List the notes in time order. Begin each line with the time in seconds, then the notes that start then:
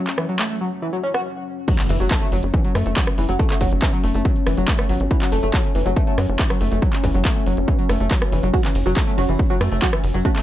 Already playing: F#3 C#4
0.07 clap
0.18 E3, cross-stick
0.29 F#3
0.39 A3, clap
0.50 A3
0.61 F#3
0.82 E3
0.93 F#3
1.03 C#4
1.14 F#4, cross-stick
1.68 F#3 C#4, kick, closed hi-hat, crash, impact
1.79 clap, closed hi-hat
1.89 F#1 E3, open hi-hat
2.00 F#1 F#3, closed hi-hat
2.11 A3, kick, clap, closed hi-hat
2.21 A3, closed hi-hat
2.32 F#1 F#3, open hi-hat
2.43 F#1, closed hi-hat
2.54 E3, kick, closed hi-hat
2.64 F#3, closed hi-hat
2.75 F#2 A3, cross-stick, open hi-hat
2.86 F#1 A3, closed hi-hat
2.96 F#3, kick, clap, closed hi-hat
3.07 cross-stick, closed hi-hat
3.18 F#1 E3, open hi-hat
3.29 F#1 F#3, closed hi-hat
3.39 A3, kick, closed hi-hat
3.50 A3, clap, closed hi-hat
3.61 F#1 F#3, kick, open hi-hat
3.72 F#1, closed hi-hat
3.82 E3, kick, clap, closed hi-hat
3.93 F#3, closed hi-hat
4.04 F#1 A3, open hi-hat
4.14 F#1 A3, closed hi-hat
4.25 F#3, kick, closed hi-hat
4.36 closed hi-hat
4.46 F#1 E3, cross-stick, open hi-hat
4.57 F#1 F#3, closed hi-hat
4.68 A3, kick, clap, closed hi-hat
4.79 A3, cross-stick, closed hi-hat
4.89 G#1 F#3, open hi-hat
5.00 G#1, closed hi-hat
5.11 E3, kick, closed hi-hat
5.21 F#3, clap, closed hi-hat
5.32 F#1 A3, open hi-hat
5.43 F#1 A3, closed hi-hat
5.54 F#3, kick, clap, closed hi-hat
5.64 closed hi-hat
5.75 F#1 E3, open hi-hat
5.86 F#1 F#3, closed hi-hat
5.96 A3, kick, closed hi-hat
6.07 A3, closed hi-hat
6.18 F#2 F#3, cross-stick, open hi-hat
6.29 F#1, closed hi-hat
6.39 E3, kick, clap, closed hi-hat
6.50 F#3, cross-stick, closed hi-hat
6.61 F#1 A3, open hi-hat
6.71 F#1 A3, closed hi-hat
6.82 F#3, kick, closed hi-hat
6.93 clap, closed hi-hat
7.04 F#1 E3, kick, open hi-hat
7.14 F#1 F#3, closed hi-hat
7.25 A3, kick, clap, closed hi-hat
7.36 A3, closed hi-hat
7.46 F#1 F#3, open hi-hat
7.57 F#1, closed hi-hat
7.68 E3, kick, closed hi-hat
7.79 F#3, closed hi-hat
7.89 F#1 A3, cross-stick, open hi-hat
8.00 F#1 A3, closed hi-hat
8.11 F#3, kick, clap, closed hi-hat
8.22 cross-stick, closed hi-hat
8.32 F#1 E3, open hi-hat
8.43 F#1 F#3, closed hi-hat
8.54 F#3 C#4 F#4, kick, closed hi-hat, ride
8.64 E3, clap, closed hi-hat
8.75 F#1, open hi-hat, ride
8.86 F#1 F#3 C#4 F#4, closed hi-hat
8.96 A3, kick, clap, closed hi-hat, ride
9.07 A3, closed hi-hat
9.18 F#1 F#3 C#4 F#4, open hi-hat, ride
9.29 F#1 E3, closed hi-hat
9.39 kick, closed hi-hat, ride
9.50 F#3 C#4 F#4, closed hi-hat
9.61 F#2 A3, cross-stick, open hi-hat, ride
9.71 F#1 A3, closed hi-hat
9.82 F#3 C#4 F#4, kick, clap, closed hi-hat, ride
9.93 E3, cross-stick, closed hi-hat
10.03 F#1, open hi-hat, ride
10.14 F#1 F#3, closed hi-hat
10.25 F#3 A3 C#4 F#4, kick, closed hi-hat, ride
10.35 A3, clap, closed hi-hat